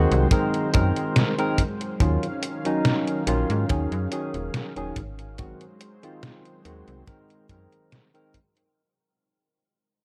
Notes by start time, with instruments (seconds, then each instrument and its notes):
Already playing: tine electric piano D#3 G#3 C4 F#4, analog synth pad F#3 G#3 C5
0.11 fm bass C2, closed hi-hat
0.31 tine electric piano D#3 G#3 C4 A#4, kick, closed hi-hat
0.54 closed hi-hat
0.73 fm bass F#2, tine electric piano D#3 G#3 C4 A#4, kick, closed hi-hat
0.96 closed hi-hat
1.16 snare, closed hi-hat
1.38 tine electric piano D#3 G#3 C4 A#4, closed hi-hat
1.58 kick, closed hi-hat
1.81 closed hi-hat
2.00 fm bass D#2, tine electric piano D#3 F#3 C#4 F4, analog synth pad D#3 C#4 F5, kick, closed hi-hat
2.23 closed hi-hat
2.43 closed hi-hat
2.65 tine electric piano D#3 F#3 C#4 D#4, closed hi-hat
2.85 snare, closed hi-hat
3.08 closed hi-hat
3.27 fm bass A#1, tine electric piano D#3 F#3 C#4 F4, closed hi-hat
3.50 fm bass G#2, closed hi-hat
3.69 fm bass D#2, tine electric piano D#3 F#3 C#4 G#4, kick, closed hi-hat
3.92 fm bass F#2, closed hi-hat
4.11 tine electric piano D#3 F#3 C#4 G#4, closed hi-hat
4.34 fm bass D#1, closed hi-hat
4.54 snare, closed hi-hat
4.76 fm bass D#1, tine electric piano D#3 F#3 C#4 G#4, closed hi-hat
4.96 fm bass G#1, kick, closed hi-hat
5.19 closed hi-hat
5.38 tine electric piano D#3 G#3 C4 F#4, analog synth pad F#3 G#3 C5, kick, closed hi-hat
5.61 closed hi-hat
5.81 closed hi-hat
6.03 tine electric piano D#3 G#3 C4 F4, closed hi-hat
6.23 snare, closed hi-hat
6.45 closed hi-hat
6.65 fm bass D#2, tine electric piano D#3 G#3 C4 F#4, closed hi-hat
6.88 fm bass C2, closed hi-hat
7.07 tine electric piano D#3 G#3 C4 A#4, kick, closed hi-hat
7.30 closed hi-hat
7.49 fm bass F#2, tine electric piano D#3 G#3 C4 A#4, kick, closed hi-hat
7.72 closed hi-hat
7.92 snare, closed hi-hat
8.14 tine electric piano D#3 G#3 C4 A#4, closed hi-hat
8.34 kick, closed hi-hat
8.57 closed hi-hat